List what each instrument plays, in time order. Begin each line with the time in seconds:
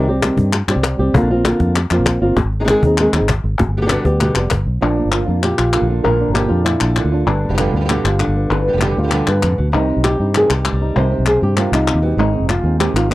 0.00 fingered electric bass C2
0.08 nylon-string guitar G3 C4 G4, cajon slap
0.22 nylon-string guitar D#3 G3 C4 G4, cajon slap, clap
0.37 fingered electric bass G2, cajon bass
0.53 muted nylon-string guitar stroke, clap
0.68 fingered electric bass G2, nylon-string guitar G3 C4 G4, clap
0.76 fingered electric bass C2
0.83 cajon slap, clap
0.99 fingered electric bass C2, nylon-string guitar G3 C4 G4
1.13 fingered electric bass A#1, nylon-string guitar D3 A#3 C4, cajon bass
1.18 nylon-string guitar F4
1.22 fingered electric bass A#1
1.31 nylon-string guitar A#3 C4 F4
1.44 nylon-string guitar D3 A#3 C4 F4, cajon slap, clap
1.60 fingered electric bass F2, cajon bass, cajon slap
1.76 muted nylon-string guitar stroke, clap
1.91 fingered electric bass F2, nylon-string guitar A#3 C4 F4, clap
1.99 fingered electric bass A#1
2.06 cajon bass, cajon slap, clap
2.21 fingered electric bass G1, nylon-string guitar A#3 C4 F4
2.36 fingered electric bass G#1, muted nylon-string guitar stroke, cajon bass, cajon slap
2.44 fingered electric bass G#1
2.52 cajon slap
2.60 nylon-string guitar G#3 C4 D#4 G#4
2.64 nylon-string guitar G#3 C4 D#4 G#4, cajon slap, clap
2.69 nylon-string guitar D#3 G#3 C4 D#4 G#4
2.83 fingered electric bass D#2, nylon-string guitar C4 D#4 G#4, cajon bass
2.98 nylon-string guitar D#3 G#3 C4 D#4 G#4, clap
3.13 fingered electric bass D#2, nylon-string guitar C4 D#4 G#4, clap
3.21 fingered electric bass G#1
3.29 muted nylon-string guitar stroke, cajon bass, cajon slap, clap
3.44 fingered electric bass G#1
3.59 fingered electric bass G1, muted nylon-string guitar stroke, cajon bass, cajon slap
3.67 fingered electric bass G1
3.77 nylon-string guitar D3 G3 B3 G4
3.81 nylon-string guitar D3 G3 B3 G4
3.86 nylon-string guitar D3 G3 B3 G4, cajon slap, clap
3.91 nylon-string guitar B2 D3 G3 B3 G4
4.05 fingered electric bass D2, nylon-string guitar G3 B3 G4, cajon bass, cajon slap
4.21 nylon-string guitar B2 D3 G3 B3 G4, clap
4.35 fingered electric bass F1, nylon-string guitar G3 B3 G4, clap
4.50 fingered electric bass G1, muted nylon-string guitar stroke, cajon bass, cajon slap, clap
4.66 fingered electric bass B1
4.81 fingered electric bass A#1, nylon-string guitar A#2 F3 A#3 D4 F4
4.98 nylon-string guitar A#3
5.05 fingered electric bass G1
5.12 nylon-string guitar F3 A#3 D4 F4, clap
5.26 fingered electric bass F2, nylon-string guitar A#3 D4 F4
5.43 nylon-string guitar A#2 G4, muted nylon-string guitar stroke, clap
5.58 fingered electric bass A#1, nylon-string guitar F4, clap
5.73 nylon-string guitar D3 A#3 D4 F4, clap
5.82 fingered electric bass A#1
5.89 nylon-string guitar A#3 D4 F4
6.04 fingered electric bass A#1, nylon-string guitar A#2 F3 A#3 D4 F4 A#4
6.21 nylon-string guitar D4
6.28 fingered electric bass G1
6.34 nylon-string guitar F3 A#3 D4 F4 G4, clap
6.48 fingered electric bass F2, nylon-string guitar A#3 D4 F4
6.65 nylon-string guitar A#2 E4, muted nylon-string guitar stroke, clap
6.80 fingered electric bass A#1, nylon-string guitar D4, clap
6.96 nylon-string guitar D3 A#3 D4 F4, clap
7.04 fingered electric bass D2
7.12 nylon-string guitar A#3 D4 F4
7.26 fingered electric bass G1, nylon-string guitar G2 D4, muted nylon-string guitar stroke
7.45 nylon-string guitar B3
7.49 fingered electric bass F1, nylon-string guitar D3 G3 B3 G4
7.54 nylon-string guitar D3 G3 B3 G4
7.58 nylon-string guitar B2 D3 G3 B3 F4 G4, clap
7.73 fingered electric bass D2, nylon-string guitar D3 G3 B3 G4
7.80 nylon-string guitar D3 G3 B3 G4
7.85 nylon-string guitar D3 G3 B3 G4
7.89 nylon-string guitar B2 D3 G3 B3 G4, clap
8.04 fingered electric bass G1, nylon-string guitar G3 B3 F4 G4, clap
8.19 nylon-string guitar D3, muted nylon-string guitar stroke, clap
8.27 fingered electric bass G1
8.36 nylon-string guitar B3
8.50 fingered electric bass G1, nylon-string guitar G2 B4, muted nylon-string guitar stroke
8.68 nylon-string guitar D3 G3 B3 G4
8.72 fingered electric bass F1, nylon-string guitar D3 G3 B3 G4
8.77 nylon-string guitar D3 G3 B3 G4
8.81 nylon-string guitar B2 D3 G3 B3 G4, clap
8.96 fingered electric bass D2, nylon-string guitar G3 B3 F4 G4
9.03 nylon-string guitar D3 G3 B3 G4
9.07 nylon-string guitar D3 G3 B3 G4, clap
9.12 nylon-string guitar B2 D3 G3 B3 G4
9.27 fingered electric bass G2, nylon-string guitar G3 B3 G4 B4, clap
9.43 fingered electric bass F2, nylon-string guitar G#2, muted nylon-string guitar stroke, clap
9.58 fingered electric bass D2, nylon-string guitar B2
9.72 fingered electric bass C2, nylon-string guitar C3 D#3 G3 C4 D#4 G4
9.89 nylon-string guitar G3 C4 G4
9.97 fingered electric bass B1
10.04 nylon-string guitar G4, muted nylon-string guitar stroke, clap
10.20 fingered electric bass G2, nylon-string guitar G3 C4 D#4 G4
10.35 nylon-string guitar G2 C3 D#3 G3 C4 G4 G#4, clap
10.50 fingered electric bass C2, nylon-string guitar G3 C4 G4, clap
10.65 nylon-string guitar G3, muted nylon-string guitar stroke, clap
10.73 fingered electric bass C2
10.81 nylon-string guitar G3 C4 D#4 G4
10.96 fingered electric bass C2, nylon-string guitar C3 D#3 G3 C4 G4 C5
11.11 nylon-string guitar G3 C4 G4
11.19 fingered electric bass B1
11.26 nylon-string guitar G#4, muted nylon-string guitar stroke, clap
11.41 fingered electric bass G2, nylon-string guitar G3 C4 G4
11.55 nylon-string guitar C3 D#3 G3 C4 F4 G4, clap
11.71 fingered electric bass C2, nylon-string guitar G3 C4 D#4 G4, clap
11.87 nylon-string guitar C3, muted nylon-string guitar stroke, clap
11.94 fingered electric bass D#2
12.02 nylon-string guitar B2 G3 C4 G4
12.17 fingered electric bass G#1, nylon-string guitar G#2 D#3 G#3 C4 D#4 G#4
12.33 nylon-string guitar C4 D#4 G#4
12.40 fingered electric bass F1
12.48 nylon-string guitar F4, muted nylon-string guitar stroke, clap
12.63 fingered electric bass D#2, nylon-string guitar C4 D#4 G#4
12.79 nylon-string guitar D#3 G#3 C4 D#4 G4 G#4, clap
12.94 fingered electric bass G#1, nylon-string guitar C4 D#4 F4 G#4, clap
13.10 nylon-string guitar B2, muted nylon-string guitar stroke